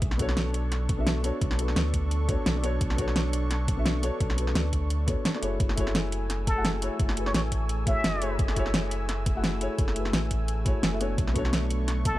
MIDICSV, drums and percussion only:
0, 0, Header, 1, 2, 480
1, 0, Start_track
1, 0, Key_signature, 3, "minor"
1, 0, Tempo, 348837
1, 26, Time_signature, 4, 2, 24, 8
1, 16771, End_track
2, 0, Start_track
2, 0, Title_t, "Drums"
2, 26, Note_on_c, 9, 42, 76
2, 27, Note_on_c, 9, 36, 120
2, 154, Note_on_c, 9, 40, 46
2, 163, Note_off_c, 9, 42, 0
2, 164, Note_off_c, 9, 36, 0
2, 266, Note_on_c, 9, 42, 87
2, 267, Note_on_c, 9, 36, 60
2, 292, Note_off_c, 9, 40, 0
2, 394, Note_on_c, 9, 40, 46
2, 404, Note_off_c, 9, 36, 0
2, 404, Note_off_c, 9, 42, 0
2, 506, Note_on_c, 9, 38, 116
2, 506, Note_on_c, 9, 42, 74
2, 532, Note_off_c, 9, 40, 0
2, 644, Note_off_c, 9, 38, 0
2, 644, Note_off_c, 9, 42, 0
2, 746, Note_on_c, 9, 42, 86
2, 884, Note_off_c, 9, 42, 0
2, 987, Note_on_c, 9, 40, 46
2, 987, Note_on_c, 9, 42, 74
2, 1124, Note_off_c, 9, 40, 0
2, 1124, Note_off_c, 9, 42, 0
2, 1227, Note_on_c, 9, 42, 91
2, 1228, Note_on_c, 9, 36, 105
2, 1364, Note_off_c, 9, 42, 0
2, 1365, Note_off_c, 9, 36, 0
2, 1467, Note_on_c, 9, 38, 117
2, 1467, Note_on_c, 9, 42, 76
2, 1605, Note_off_c, 9, 38, 0
2, 1605, Note_off_c, 9, 42, 0
2, 1707, Note_on_c, 9, 42, 91
2, 1845, Note_off_c, 9, 42, 0
2, 1947, Note_on_c, 9, 42, 78
2, 1948, Note_on_c, 9, 36, 113
2, 2075, Note_on_c, 9, 40, 47
2, 2084, Note_off_c, 9, 42, 0
2, 2085, Note_off_c, 9, 36, 0
2, 2186, Note_on_c, 9, 42, 91
2, 2212, Note_off_c, 9, 40, 0
2, 2314, Note_on_c, 9, 40, 44
2, 2324, Note_off_c, 9, 42, 0
2, 2426, Note_on_c, 9, 38, 117
2, 2426, Note_on_c, 9, 42, 79
2, 2452, Note_off_c, 9, 40, 0
2, 2563, Note_off_c, 9, 38, 0
2, 2563, Note_off_c, 9, 42, 0
2, 2666, Note_on_c, 9, 42, 91
2, 2667, Note_on_c, 9, 36, 58
2, 2804, Note_off_c, 9, 42, 0
2, 2805, Note_off_c, 9, 36, 0
2, 2907, Note_on_c, 9, 42, 76
2, 3044, Note_off_c, 9, 42, 0
2, 3147, Note_on_c, 9, 36, 103
2, 3147, Note_on_c, 9, 42, 92
2, 3285, Note_off_c, 9, 36, 0
2, 3285, Note_off_c, 9, 42, 0
2, 3387, Note_on_c, 9, 38, 115
2, 3387, Note_on_c, 9, 42, 77
2, 3525, Note_off_c, 9, 38, 0
2, 3525, Note_off_c, 9, 42, 0
2, 3627, Note_on_c, 9, 42, 94
2, 3765, Note_off_c, 9, 42, 0
2, 3866, Note_on_c, 9, 36, 111
2, 3866, Note_on_c, 9, 42, 81
2, 3993, Note_on_c, 9, 40, 47
2, 4003, Note_off_c, 9, 42, 0
2, 4004, Note_off_c, 9, 36, 0
2, 4106, Note_on_c, 9, 36, 58
2, 4106, Note_on_c, 9, 42, 94
2, 4130, Note_off_c, 9, 40, 0
2, 4233, Note_on_c, 9, 40, 44
2, 4243, Note_off_c, 9, 42, 0
2, 4244, Note_off_c, 9, 36, 0
2, 4345, Note_on_c, 9, 38, 111
2, 4345, Note_on_c, 9, 42, 82
2, 4371, Note_off_c, 9, 40, 0
2, 4483, Note_off_c, 9, 38, 0
2, 4483, Note_off_c, 9, 42, 0
2, 4585, Note_on_c, 9, 42, 93
2, 4723, Note_off_c, 9, 42, 0
2, 4825, Note_on_c, 9, 40, 47
2, 4825, Note_on_c, 9, 42, 80
2, 4962, Note_off_c, 9, 40, 0
2, 4962, Note_off_c, 9, 42, 0
2, 5066, Note_on_c, 9, 36, 103
2, 5066, Note_on_c, 9, 42, 95
2, 5203, Note_off_c, 9, 42, 0
2, 5204, Note_off_c, 9, 36, 0
2, 5306, Note_on_c, 9, 38, 113
2, 5306, Note_on_c, 9, 42, 81
2, 5444, Note_off_c, 9, 38, 0
2, 5444, Note_off_c, 9, 42, 0
2, 5546, Note_on_c, 9, 42, 95
2, 5684, Note_off_c, 9, 42, 0
2, 5786, Note_on_c, 9, 36, 112
2, 5786, Note_on_c, 9, 42, 82
2, 5914, Note_on_c, 9, 40, 50
2, 5924, Note_off_c, 9, 36, 0
2, 5924, Note_off_c, 9, 42, 0
2, 6026, Note_on_c, 9, 42, 98
2, 6051, Note_off_c, 9, 40, 0
2, 6155, Note_on_c, 9, 40, 48
2, 6164, Note_off_c, 9, 42, 0
2, 6267, Note_on_c, 9, 38, 118
2, 6267, Note_on_c, 9, 42, 84
2, 6293, Note_off_c, 9, 40, 0
2, 6404, Note_off_c, 9, 38, 0
2, 6404, Note_off_c, 9, 42, 0
2, 6506, Note_on_c, 9, 36, 57
2, 6507, Note_on_c, 9, 42, 96
2, 6644, Note_off_c, 9, 36, 0
2, 6645, Note_off_c, 9, 42, 0
2, 6747, Note_on_c, 9, 42, 81
2, 6885, Note_off_c, 9, 42, 0
2, 6986, Note_on_c, 9, 36, 105
2, 6987, Note_on_c, 9, 42, 100
2, 7123, Note_off_c, 9, 36, 0
2, 7124, Note_off_c, 9, 42, 0
2, 7227, Note_on_c, 9, 38, 113
2, 7227, Note_on_c, 9, 42, 82
2, 7354, Note_on_c, 9, 40, 34
2, 7365, Note_off_c, 9, 38, 0
2, 7365, Note_off_c, 9, 42, 0
2, 7466, Note_on_c, 9, 42, 97
2, 7491, Note_off_c, 9, 40, 0
2, 7603, Note_off_c, 9, 42, 0
2, 7706, Note_on_c, 9, 36, 119
2, 7706, Note_on_c, 9, 42, 84
2, 7834, Note_on_c, 9, 40, 51
2, 7843, Note_off_c, 9, 36, 0
2, 7844, Note_off_c, 9, 42, 0
2, 7946, Note_on_c, 9, 36, 61
2, 7946, Note_on_c, 9, 42, 99
2, 7971, Note_off_c, 9, 40, 0
2, 8074, Note_on_c, 9, 40, 49
2, 8084, Note_off_c, 9, 36, 0
2, 8084, Note_off_c, 9, 42, 0
2, 8186, Note_on_c, 9, 38, 119
2, 8186, Note_on_c, 9, 42, 83
2, 8212, Note_off_c, 9, 40, 0
2, 8324, Note_off_c, 9, 38, 0
2, 8324, Note_off_c, 9, 42, 0
2, 8426, Note_on_c, 9, 42, 93
2, 8564, Note_off_c, 9, 42, 0
2, 8666, Note_on_c, 9, 40, 48
2, 8666, Note_on_c, 9, 42, 82
2, 8804, Note_off_c, 9, 40, 0
2, 8804, Note_off_c, 9, 42, 0
2, 8906, Note_on_c, 9, 36, 105
2, 8906, Note_on_c, 9, 42, 96
2, 9044, Note_off_c, 9, 36, 0
2, 9044, Note_off_c, 9, 42, 0
2, 9146, Note_on_c, 9, 38, 121
2, 9146, Note_on_c, 9, 42, 84
2, 9283, Note_off_c, 9, 38, 0
2, 9283, Note_off_c, 9, 42, 0
2, 9385, Note_on_c, 9, 42, 97
2, 9523, Note_off_c, 9, 42, 0
2, 9625, Note_on_c, 9, 42, 81
2, 9626, Note_on_c, 9, 36, 122
2, 9754, Note_on_c, 9, 40, 50
2, 9763, Note_off_c, 9, 36, 0
2, 9763, Note_off_c, 9, 42, 0
2, 9866, Note_on_c, 9, 42, 96
2, 9891, Note_off_c, 9, 40, 0
2, 9994, Note_on_c, 9, 40, 49
2, 10004, Note_off_c, 9, 42, 0
2, 10106, Note_on_c, 9, 38, 123
2, 10106, Note_on_c, 9, 42, 82
2, 10131, Note_off_c, 9, 40, 0
2, 10244, Note_off_c, 9, 38, 0
2, 10244, Note_off_c, 9, 42, 0
2, 10345, Note_on_c, 9, 42, 93
2, 10346, Note_on_c, 9, 36, 63
2, 10483, Note_off_c, 9, 42, 0
2, 10484, Note_off_c, 9, 36, 0
2, 10586, Note_on_c, 9, 42, 79
2, 10723, Note_off_c, 9, 42, 0
2, 10826, Note_on_c, 9, 42, 95
2, 10827, Note_on_c, 9, 36, 108
2, 10964, Note_off_c, 9, 36, 0
2, 10964, Note_off_c, 9, 42, 0
2, 11066, Note_on_c, 9, 38, 122
2, 11066, Note_on_c, 9, 42, 81
2, 11203, Note_off_c, 9, 38, 0
2, 11203, Note_off_c, 9, 42, 0
2, 11306, Note_on_c, 9, 42, 96
2, 11444, Note_off_c, 9, 42, 0
2, 11546, Note_on_c, 9, 36, 127
2, 11546, Note_on_c, 9, 42, 77
2, 11672, Note_on_c, 9, 40, 50
2, 11683, Note_off_c, 9, 42, 0
2, 11684, Note_off_c, 9, 36, 0
2, 11785, Note_on_c, 9, 42, 90
2, 11786, Note_on_c, 9, 36, 65
2, 11810, Note_off_c, 9, 40, 0
2, 11912, Note_on_c, 9, 40, 47
2, 11922, Note_off_c, 9, 42, 0
2, 11923, Note_off_c, 9, 36, 0
2, 12025, Note_on_c, 9, 38, 126
2, 12025, Note_on_c, 9, 42, 78
2, 12050, Note_off_c, 9, 40, 0
2, 12162, Note_off_c, 9, 38, 0
2, 12162, Note_off_c, 9, 42, 0
2, 12265, Note_on_c, 9, 42, 92
2, 12402, Note_off_c, 9, 42, 0
2, 12505, Note_on_c, 9, 40, 50
2, 12505, Note_on_c, 9, 42, 76
2, 12643, Note_off_c, 9, 40, 0
2, 12643, Note_off_c, 9, 42, 0
2, 12745, Note_on_c, 9, 36, 112
2, 12745, Note_on_c, 9, 42, 91
2, 12882, Note_off_c, 9, 42, 0
2, 12883, Note_off_c, 9, 36, 0
2, 12985, Note_on_c, 9, 38, 123
2, 12985, Note_on_c, 9, 42, 80
2, 13123, Note_off_c, 9, 38, 0
2, 13123, Note_off_c, 9, 42, 0
2, 13225, Note_on_c, 9, 42, 90
2, 13362, Note_off_c, 9, 42, 0
2, 13464, Note_on_c, 9, 42, 77
2, 13465, Note_on_c, 9, 36, 124
2, 13592, Note_on_c, 9, 40, 46
2, 13602, Note_off_c, 9, 42, 0
2, 13603, Note_off_c, 9, 36, 0
2, 13704, Note_on_c, 9, 42, 88
2, 13730, Note_off_c, 9, 40, 0
2, 13833, Note_on_c, 9, 40, 46
2, 13842, Note_off_c, 9, 42, 0
2, 13944, Note_on_c, 9, 38, 124
2, 13944, Note_on_c, 9, 42, 75
2, 13970, Note_off_c, 9, 40, 0
2, 14082, Note_off_c, 9, 38, 0
2, 14082, Note_off_c, 9, 42, 0
2, 14184, Note_on_c, 9, 42, 86
2, 14185, Note_on_c, 9, 36, 62
2, 14321, Note_off_c, 9, 42, 0
2, 14323, Note_off_c, 9, 36, 0
2, 14424, Note_on_c, 9, 42, 76
2, 14561, Note_off_c, 9, 42, 0
2, 14664, Note_on_c, 9, 42, 89
2, 14665, Note_on_c, 9, 36, 111
2, 14802, Note_off_c, 9, 42, 0
2, 14803, Note_off_c, 9, 36, 0
2, 14904, Note_on_c, 9, 38, 126
2, 14904, Note_on_c, 9, 42, 74
2, 15042, Note_off_c, 9, 38, 0
2, 15042, Note_off_c, 9, 42, 0
2, 15145, Note_on_c, 9, 42, 89
2, 15282, Note_off_c, 9, 42, 0
2, 15385, Note_on_c, 9, 36, 119
2, 15386, Note_on_c, 9, 42, 76
2, 15514, Note_on_c, 9, 40, 46
2, 15523, Note_off_c, 9, 36, 0
2, 15523, Note_off_c, 9, 42, 0
2, 15625, Note_on_c, 9, 36, 62
2, 15626, Note_on_c, 9, 42, 87
2, 15652, Note_off_c, 9, 40, 0
2, 15753, Note_on_c, 9, 40, 46
2, 15763, Note_off_c, 9, 36, 0
2, 15764, Note_off_c, 9, 42, 0
2, 15865, Note_on_c, 9, 38, 120
2, 15865, Note_on_c, 9, 42, 77
2, 15891, Note_off_c, 9, 40, 0
2, 16002, Note_off_c, 9, 38, 0
2, 16002, Note_off_c, 9, 42, 0
2, 16106, Note_on_c, 9, 42, 89
2, 16244, Note_off_c, 9, 42, 0
2, 16346, Note_on_c, 9, 40, 45
2, 16346, Note_on_c, 9, 42, 77
2, 16483, Note_off_c, 9, 40, 0
2, 16483, Note_off_c, 9, 42, 0
2, 16585, Note_on_c, 9, 42, 90
2, 16586, Note_on_c, 9, 36, 105
2, 16722, Note_off_c, 9, 42, 0
2, 16724, Note_off_c, 9, 36, 0
2, 16771, End_track
0, 0, End_of_file